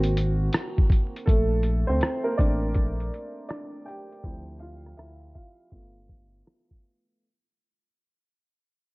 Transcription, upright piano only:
Already playing: A#3 C4 F#4 F#5
1.26 A3 A4
1.87 C4 C5
2.24 A#3 A#4
2.38 A3 C4 D4 D5
3.49 D4 D5
3.86 G4 G5
4.24 F3 C4 E4
4.60 F4 F5
4.97 E4 E5
5.35 F4 F5
5.72 A3 B3 F4

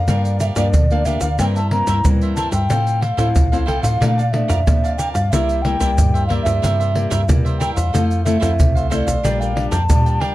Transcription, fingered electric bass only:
0.08 G2
0.56 G2
0.74 D2
1.22 D2
1.40 G2
1.87 G2
2.05 G3
2.52 G2
2.70 A2
3.18 A2
3.35 C2
3.83 A2
4.01 A#2
4.49 F2
4.67 A#3
5.15 G2
5.33 C2
5.81 C2
5.98 G2
6.46 G2
6.64 G2
7.12 G2
7.29 C3
7.77 E2
7.94 F2
8.42 F2
8.59 C2
9.07 B1
9.25 A#1
9.72 F2
9.90 A#2

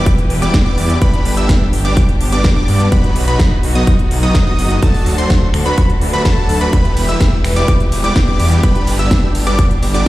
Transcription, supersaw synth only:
Already playing: G3 B3 E4 G4 D5
0.42 G3 B3 E4 G4 D5
0.66 G3 B3 E4 G4 D5
1.01 G3 B3 D4 G4 B4
1.37 G3 B3 D4 G4 E5
1.85 G3 B3 D4 G4 D5
2.33 G3 B3 D4 G4 D5
2.56 G3 B3 D4 G4 D5
2.92 F#3 B3 D#4 F#4 B4
3.28 F#3 B3 D#4 F#4 B4
3.75 F#3 B3 D#4 F#4 D#5
4.23 F#3 B3 D#4 F#4 D#5
4.47 F#3 B3 D#4 F#4 D#5
4.82 F#3 A3 D4 F#4 A4
5.18 F#3 A3 D4 F#4 C5
5.66 F#3 A3 D4 F#4 B4
6.13 F#3 A3 D4 F#4 B4
6.25 F#3 A3 D4 A4
6.61 F#3 A3 D4 F#4 B4
6.73 G3 B3 E4 G4 B4
7.09 G3 B3 E4 G4 E5
7.56 G3 B3 E4 G4 D5
8.04 G3 B3 E4 G4 D5
8.28 G3 B3 E4 G4 D5
8.63 G3 B3 D4 G4 B4
8.99 G3 B3 D4 G4 E5
9.47 G3 B3 D4 G4 D5
9.94 G3 B3 D4 G4 D5

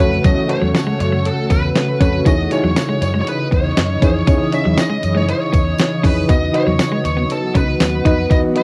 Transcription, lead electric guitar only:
0.00 B4
0.25 D#5
0.51 C#5
1.01 C#5
1.26 A4
1.52 B4
2.02 B4
2.27 D#5
2.52 C#5
3.03 C#5
3.21 C#5
3.28 B4
3.54 C#5
4.04 C#5
4.54 E5
4.80 D#5
5.17 C#5
5.30 C#5
6.06 B4
6.30 D#5
6.56 C#5
7.06 C#5
7.31 A4
7.57 B4
8.07 B4
8.32 D#5
8.57 C#5

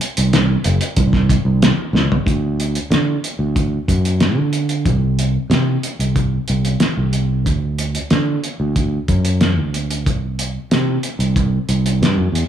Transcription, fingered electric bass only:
0.18 C2
0.65 F#1
0.97 C2
1.45 C2
1.93 C#2
2.26 D2
2.91 D3
3.39 D2
3.88 F#2
4.36 D3
4.85 C2
5.50 C3
5.99 C2
6.50 C2
6.97 C2
7.46 D2
8.13 D3
8.60 D2
9.08 F#2
9.59 D2
10.06 C2
10.72 C3
11.19 C2
11.69 C2
12.01 G2
12.17 F#2
12.32 E2

